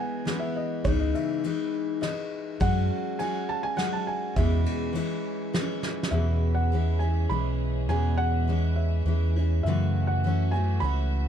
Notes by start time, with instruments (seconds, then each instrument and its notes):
Already playing: steel-string acoustic guitar E3 G#3 B3 E4, felt piano G#5
0.25 steel-string acoustic guitar E3 G#3 B3 E4, snare, ride
0.40 felt piano E5
0.56 felt piano D#5
0.84 fingered electric bass C#2, steel-string acoustic guitar C#3 E3 G#3 D#4 E4, felt piano C#5, kick, ride
0.99 felt piano D#5
1.15 felt piano E5, ride
1.44 steel-string acoustic guitar E3 G#3 D#4 E4, ride
2.01 steel-string acoustic guitar E3 G#3 D#4 E4, felt piano D#5, snare, ride
2.60 fingered electric bass F#2, steel-string acoustic guitar F#3 G#3 C#4 F#4, felt piano F#5, kick, ride
3.19 steel-string acoustic guitar F#3 G#3 C#4 F#4, felt piano G#5, ride
3.49 felt piano A5
3.63 felt piano G#5
3.77 steel-string acoustic guitar F#3 G#3 C#4 F#4, felt piano F#5, snare, ride
3.93 felt piano A5
4.07 felt piano G#5
4.36 fingered electric bass E2, steel-string acoustic guitar E2 B2 E3 G#3 C#4 E4, felt piano E5, kick, ride
4.66 ride
4.93 steel-string acoustic guitar E3 G#3 C#4 E4, ride
5.53 steel-string acoustic guitar E3 G#3 C#4 E4, snare, ride
5.83 snare
6.03 snare
6.11 fingered electric bass E2, steel-string acoustic guitar E2 B2 E3 G#3 C#4 E4, string section C#4 G#4 E5, felt piano E5
6.55 felt piano F#5
6.72 steel-string acoustic guitar E3 G#3 C#4 E4
6.99 steel-string acoustic guitar E3 G#3 C#4 E4, felt piano G#5
7.29 fingered electric bass B1, steel-string acoustic guitar E3 G#3 C#4 E4, felt piano B5
7.88 fingered electric bass E2, steel-string acoustic guitar E2 B2 E3 G#3 C#4 E4, string section E5, felt piano G#5
8.17 felt piano F#5
8.48 steel-string acoustic guitar E3 G#3 C#4 E4
8.76 felt piano E5
9.05 fingered electric bass E2, steel-string acoustic guitar E3 G#3 C#4 E4
9.36 steel-string acoustic guitar E3 G#3 C#4 E4
9.63 fingered electric bass F#2, steel-string acoustic guitar F#2 C#3, string section A3 F#4 E5, felt piano E5
9.68 steel-string acoustic guitar E3 A3 C#4 F#4
10.07 felt piano F#5
10.24 steel-string acoustic guitar E3 A3 C#4 F#4
10.51 steel-string acoustic guitar C#4 F#4, felt piano G#5
10.56 steel-string acoustic guitar E3 A3
10.80 fingered electric bass C#2, steel-string acoustic guitar E3 A3 C#4, felt piano B5
10.84 steel-string acoustic guitar F#4